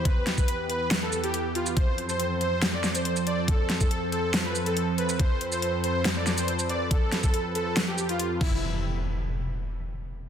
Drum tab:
CC |----------------|----------------|----------------|----------------|
HH |x-x-x-x-x--xx-x-|x-x-x-x-x--xx-x-|x-x-x-x-x--xx-x-|x-x-x-x-x--xx-x-|
SH |---x------x----x|---x------xx-x--|---x------x----x|---x------xx-x--|
SD |--o-----o-------|--------o-o-----|--o-----o-------|--------o-o-----|
BD |o--o------------|o---------------|o--o------------|o---------------|

CC |--------------x-|----------------|
HH |x-x-x-x-x--xx---|----------------|
SH |---x------x-----|----------------|
SD |--o-----o-------|----------------|
BD |o--o----------o-|----------------|